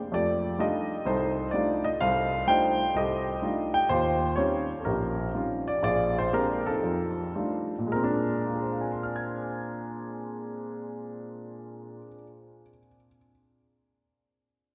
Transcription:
0.12 F2 A3 G4 A4 D5
0.58 G3 A3 D4 D#4 F4 G4 A4 D#5
1.06 C2 D#4 A4 C5
1.51 G3 A3 D4 D#4 F4 D5
1.84 D#5
2.01 C2 A4 C5 F5
2.47 G3 A3 D4 D#4 F4 C5 D#5 G5
2.95 C2 G4 A4 D#5
3.42 G3 A3 D4 D#4 F4
3.74 G5
3.89 D#2 F4 G4 C5
4.36 G3 C4 C#4 D#4 F4 G4 C#5
4.80 A4
4.85 A#1 C#4 G4 A#4
5.34 G3 C4 C#4 D#4 F4
5.68 D5
5.83 A#1 F4 G#4 D5
6.18 C5
6.32 G#3 A#3 C4 D4 G4 A#4
6.66 C4 D#4 A4
6.84 F2
7.35 G3 A3 D4 D#4 F4
7.78 A#2
7.87 G#3
7.92 C4 A#4
8.04 D4
8.46 F4
8.54 G#4
8.62 C5
8.71 F5
8.81 G#5
8.92 C6
9.03 F6
9.16 G#6

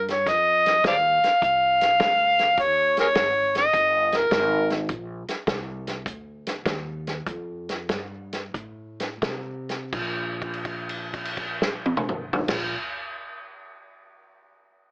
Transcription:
Already playing: G2
0.08 C#5, snare, closed hi-hat
0.26 F2 D#5, kick, snare, closed hi-hat
0.66 snare, closed hi-hat
0.84 D#2 C5 D5 F5, kick, snare, closed hi-hat
1.24 muted upright bass stroke, snare, closed hi-hat
1.42 C2 F5, kick, closed hi-hat
1.81 snare, closed hi-hat
2.00 D2, kick, snare, closed hi-hat
2.39 snare, closed hi-hat
2.57 D#2 C#5, kick, closed hi-hat
2.97 G#4 A#4 C#5, snare, closed hi-hat
3.15 G#1, kick, snare, closed hi-hat
3.55 D#5, snare, closed hi-hat
3.73 G1, kick, closed hi-hat
4.12 snare, closed hi-hat
4.17 A#4
4.31 G#1, kick, snare, closed hi-hat
4.70 snare, closed hi-hat
4.89 A#1, kick, closed hi-hat
5.28 muted upright bass stroke, snare, closed hi-hat
5.47 C2, kick, snare, closed hi-hat
5.87 snare, closed hi-hat
6.06 D2, kick, closed hi-hat
6.47 snare, closed hi-hat
6.66 D#2, kick, snare, closed hi-hat
7.07 snare, closed hi-hat
7.26 F2, kick, closed hi-hat
7.69 snare, closed hi-hat
7.89 G2, kick, snare, closed hi-hat
8.33 snare, closed hi-hat
8.54 A2, kick, closed hi-hat
9.00 snare, closed hi-hat
9.22 C3, kick, snare, closed hi-hat
9.69 snare, closed hi-hat
9.93 A#1, kick, crash
10.42 kick, crash
10.54 crash
10.65 kick, crash
10.89 crash
11.14 kick, crash
11.25 crash
11.37 kick, crash
11.62 snare
11.86 high tom
11.97 mid tom
12.09 mid tom
12.33 floor tom
12.48 A#1, kick, snare, crash

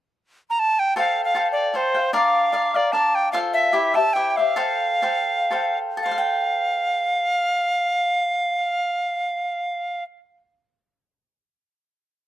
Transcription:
0.50 A#5
0.59 A5
0.79 G5
0.96 A4 C5 F5 G5
1.25 F5
1.35 A4 C5 F5 G5
1.52 D5
1.74 A4 C5 F5 G5
1.94 C5 F5 G5
2.13 D4 A#4 D5 F5
2.52 D4 A#4 D5 F5
2.74 A#4 D5 F5
2.92 D4 A#4 D5 F5 A5
3.15 G5
3.32 F4 A4 C5 F5
3.53 E5
3.73 E4 G4 C5 E5
3.94 G4 C5 E5 A5
4.13 E4 G4 C5 E5 G5
4.30 G5
4.36 G4 C5 E5 F5
4.56 A4 C5 F5 G5
5.02 A4 C5 F5 G5
5.51 A4 C5 F5 G5
5.97 A4
6.02 C5 F5
6.11 F5
6.18 G5

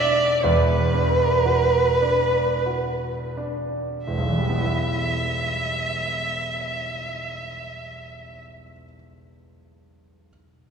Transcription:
Already playing: E1 E2 D4 F#4 D5
0.43 E1 E2 B4
0.94 D4
1.46 F#4
2.02 D4
2.66 F#4
3.37 D4
4.05 E1 E5
4.18 B1
4.29 E3
4.39 G3
4.50 B3
4.60 E4

